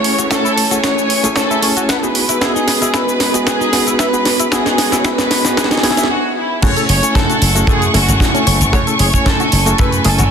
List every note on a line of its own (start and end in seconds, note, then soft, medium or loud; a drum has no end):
0.00 4.22 E3 medium
0.00 0.28 A3 medium
0.00 2.11 A3 medium
0.00 0.28 C#4 medium
0.00 0.28 E4 medium
0.00 0.29 F#4 medium
0.00 0.28 G#4 medium
0.00 0.31 C#5 loud
0.00 2.11 C#5 medium
0.04 open hi-hat loud
0.19 0.25 F#4 medium
0.19 closed hi-hat soft
0.19 cabasa medium
0.31 0.68 A3 loud
0.31 0.68 C#4 medium
0.31 0.68 E4 medium
0.31 0.41 F#4 medium
0.31 0.80 A4 loud
0.31 0.68 A4 loud
0.31 2.13 G#5 medium
0.31 kick loud
0.31 snare medium
0.31 closed hi-hat medium
0.31 cabasa medium
0.45 0.54 E4 medium
0.45 cabasa soft
0.57 0.61 C#5 medium
0.57 open hi-hat loud
0.71 1.20 A3 medium
0.71 1.21 C#4 medium
0.71 1.21 E4 medium
0.71 0.77 F#4 loud
0.71 1.21 G#4 medium
0.71 closed hi-hat medium
0.71 cabasa medium
0.84 0.91 F#4 medium
0.84 1.37 C#5 loud
0.84 kick loud
0.84 snare medium
0.84 closed hi-hat medium
0.84 cabasa soft
0.99 cabasa soft
1.10 open hi-hat loud
1.24 1.60 A3 medium
1.24 1.60 C#4 medium
1.24 1.60 E4 medium
1.24 1.60 G#4 loud
1.24 closed hi-hat medium
1.24 cabasa medium
1.36 1.85 A4 loud
1.36 1.47 C#5 medium
1.36 kick loud
1.36 snare medium
1.36 closed hi-hat medium
1.36 cabasa medium
1.51 1.60 E4 loud
1.51 cabasa soft
1.62 1.99 A3 medium
1.62 1.99 C#4 medium
1.62 2.00 E4 medium
1.62 2.00 G#4 loud
1.62 1.67 C#5 medium
1.62 open hi-hat loud
1.77 1.83 F#4 loud
1.77 closed hi-hat soft
1.77 cabasa medium
1.89 1.96 B4 medium
1.89 1.96 F#5 medium
1.89 kick loud
1.89 snare medium
1.89 closed hi-hat medium
1.89 cabasa medium
1.96 2.04 A4 medium
2.02 2.38 B3 medium
2.02 2.39 D#4 medium
2.02 2.39 F#4 medium
2.02 2.39 G#4 medium
2.02 2.42 B4 medium
2.02 cabasa soft
2.15 6.06 G#3 medium
2.15 6.06 B4 medium
2.15 open hi-hat loud
2.29 2.35 E4 medium
2.29 closed hi-hat medium
2.29 cabasa medium
2.41 2.78 B3 loud
2.41 2.52 E4 medium
2.41 2.78 F#4 medium
2.41 2.94 G#4 loud
2.41 2.79 G#4 loud
2.41 2.78 D#5 medium
2.41 kick loud
2.41 snare medium
2.41 closed hi-hat medium
2.41 cabasa medium
2.56 2.65 D#4 loud
2.56 cabasa soft
2.68 2.72 B4 medium
2.68 snare medium
2.68 open hi-hat loud
2.81 3.31 B3 medium
2.81 2.88 E4 loud
2.81 3.31 F#4 medium
2.81 3.31 G#4 medium
2.81 3.31 D#5 medium
2.81 closed hi-hat soft
2.81 cabasa medium
2.94 3.01 E4 medium
2.94 3.47 B4 loud
2.94 kick loud
2.94 snare medium
2.94 closed hi-hat medium
2.94 cabasa soft
3.09 cabasa soft
3.20 snare medium
3.20 open hi-hat loud
3.34 3.70 B3 medium
3.34 3.70 F#4 medium
3.34 3.70 G#4 loud
3.34 3.70 D#5 medium
3.34 closed hi-hat medium
3.34 cabasa medium
3.47 3.96 G#4 loud
3.47 3.57 B4 medium
3.47 kick loud
3.47 snare medium
3.47 closed hi-hat medium
3.47 cabasa soft
3.61 3.70 D#4 loud
3.61 cabasa soft
3.72 4.10 B3 medium
3.72 4.10 D#4 medium
3.72 4.10 F#4 medium
3.72 4.10 G#4 loud
3.72 3.77 B4 medium
3.72 snare medium
3.72 open hi-hat loud
3.87 3.93 E4 medium
3.87 closed hi-hat soft
3.87 cabasa medium
3.99 4.52 B4 loud
3.99 4.06 E5 medium
3.99 kick loud
3.99 snare medium
3.99 closed hi-hat medium
3.99 cabasa medium
4.13 4.49 B3 medium
4.13 4.49 F#4 medium
4.13 4.49 G#4 medium
4.13 cabasa soft
4.25 6.08 F#4 medium
4.25 snare medium
4.25 open hi-hat loud
4.40 4.46 E4 medium
4.40 closed hi-hat medium
4.40 cabasa medium
4.52 4.89 B3 loud
4.52 4.63 E4 medium
4.52 4.89 F#4 medium
4.52 4.98 G#4 medium
4.52 4.89 G#4 loud
4.52 kick loud
4.52 snare medium
4.52 closed hi-hat medium
4.52 cabasa medium
4.66 4.75 D#4 loud
4.66 snare medium
4.66 cabasa soft
4.78 4.83 B4 medium
4.78 snare medium
4.78 open hi-hat loud
4.92 5.41 B3 medium
4.92 4.98 E4 loud
4.92 5.42 F#4 medium
4.92 5.42 G#4 medium
4.92 5.42 D#5 medium
4.92 snare medium
4.92 closed hi-hat medium
4.92 cabasa medium
4.98 5.05 C#5 medium
5.04 5.12 E4 medium
5.04 5.58 B4 loud
5.04 kick loud
5.04 snare medium
5.04 closed hi-hat medium
5.04 cabasa medium
5.18 snare medium
5.18 cabasa soft
5.31 snare loud
5.31 open hi-hat loud
5.45 5.81 B3 medium
5.45 5.81 F#4 medium
5.45 5.81 G#4 loud
5.45 5.81 D#5 medium
5.45 snare medium
5.45 closed hi-hat medium
5.45 cabasa medium
5.57 5.65 G#4 loud
5.57 5.68 B4 medium
5.57 kick loud
5.57 snare loud
5.57 closed hi-hat medium
5.57 cabasa medium
5.64 5.72 F#4 medium
5.64 snare medium
5.71 5.81 D#4 loud
5.71 6.10 G#4 loud
5.71 snare medium
5.71 cabasa soft
5.77 snare medium
5.83 6.10 B3 medium
5.83 6.10 D#4 medium
5.83 5.94 E4 medium
5.83 6.10 F#4 medium
5.83 6.10 G#4 loud
5.83 snare loud
5.83 open hi-hat loud
5.90 snare medium
5.97 6.07 E5 medium
5.97 snare medium
5.97 closed hi-hat soft
5.97 cabasa medium
6.03 snare medium
6.10 6.36 F#4 medium
6.37 6.61 E4 medium
6.62 6.73 F#2 loud
6.62 6.99 A3 loud
6.62 10.31 A3 medium
6.62 7.00 C#4 medium
6.62 7.00 E4 medium
6.62 6.70 F#4 medium
6.62 7.00 G#4 loud
6.62 6.87 C#5 loud
6.62 8.71 F#5 medium
6.62 10.31 C#6 medium
6.62 kick loud
6.62 closed hi-hat medium
6.62 crash loud
6.62 cabasa medium
6.76 6.83 A4 loud
6.76 closed hi-hat soft
6.76 cabasa soft
6.89 6.99 F#1 medium
6.89 6.96 G#4 medium
6.89 7.13 C#5 loud
6.89 open hi-hat loud
7.03 7.52 A3 medium
7.03 7.52 C#4 medium
7.03 7.52 E4 medium
7.03 7.53 G#5 medium
7.03 closed hi-hat soft
7.03 cabasa medium
7.15 7.26 F#2 loud
7.15 7.68 A4 loud
7.15 kick loud
7.15 snare loud
7.15 closed hi-hat medium
7.15 cabasa medium
7.30 7.36 F#4 medium
7.30 closed hi-hat soft
7.30 cabasa soft
7.41 7.61 F#1 medium
7.41 open hi-hat loud
7.55 7.91 A3 medium
7.55 7.91 C#4 medium
7.55 7.92 E4 medium
7.55 7.65 F#4 medium
7.55 7.92 G#4 loud
7.55 closed hi-hat soft
7.55 cabasa medium
7.67 7.87 F#2 medium
7.67 7.93 G#4 loud
7.67 7.78 A4 medium
7.67 kick loud
7.67 closed hi-hat medium
7.67 cabasa medium
7.82 closed hi-hat soft
7.82 cabasa soft
7.94 8.05 F#1 loud
7.94 8.31 A3 medium
7.94 8.31 C#4 medium
7.94 8.31 E4 medium
7.94 8.44 F#4 medium
7.94 8.01 G#4 medium
7.94 8.32 G#5 medium
7.94 open hi-hat loud
8.08 8.17 F#1 medium
8.08 8.12 F#4 medium
8.08 closed hi-hat soft
8.08 cabasa medium
8.20 8.31 F#2 loud
8.20 8.25 F#4 medium
8.20 kick loud
8.20 snare loud
8.20 closed hi-hat medium
8.20 cabasa medium
8.34 8.70 A3 medium
8.34 8.38 C#4 loud
8.34 8.70 C#4 medium
8.34 8.70 E4 medium
8.34 8.71 G#5 medium
8.34 closed hi-hat soft
8.34 cabasa soft
8.47 8.57 F#1 medium
8.47 8.54 C#5 loud
8.47 open hi-hat loud
8.61 8.70 F#1 medium
8.61 closed hi-hat soft
8.61 cabasa medium
8.73 8.83 F#2 loud
8.73 9.10 A3 loud
8.73 9.10 C#4 medium
8.73 9.10 E4 medium
8.73 8.80 F#4 medium
8.73 9.10 G#4 loud
8.73 8.85 C#5 loud
8.73 10.31 G#5 medium
8.73 kick loud
8.73 closed hi-hat medium
8.73 cabasa medium
8.87 8.93 A4 loud
8.87 closed hi-hat soft
8.87 cabasa soft
8.99 9.10 F#1 medium
8.99 9.07 G#4 medium
8.99 9.24 C#5 loud
8.99 open hi-hat loud
9.13 9.63 A3 medium
9.13 9.63 C#4 medium
9.13 9.63 E4 medium
9.13 9.63 G#5 medium
9.13 kick medium
9.13 cabasa medium
9.26 9.36 F#2 loud
9.26 9.79 A4 loud
9.26 kick loud
9.26 snare loud
9.26 closed hi-hat medium
9.26 cabasa medium
9.40 9.46 F#4 medium
9.40 closed hi-hat soft
9.40 cabasa soft
9.52 9.72 F#1 medium
9.52 open hi-hat loud
9.66 10.02 A3 loud
9.66 10.02 C#4 medium
9.66 10.02 E4 medium
9.66 9.75 F#4 medium
9.66 10.02 G#4 loud
9.66 closed hi-hat soft
9.66 cabasa medium
9.78 9.99 F#2 medium
9.78 9.89 A4 medium
9.78 10.05 B4 loud
9.78 kick loud
9.78 closed hi-hat medium
9.78 cabasa medium
9.92 closed hi-hat soft
9.92 cabasa soft
10.04 10.15 F#1 loud
10.04 10.31 A3 medium
10.04 10.31 C#4 medium
10.04 10.31 E4 medium
10.04 10.12 G#4 medium
10.04 10.31 A4 medium
10.04 10.31 G#5 loud
10.04 open hi-hat loud
10.19 10.28 F#1 medium
10.19 10.23 F#4 medium
10.19 closed hi-hat soft
10.19 cabasa medium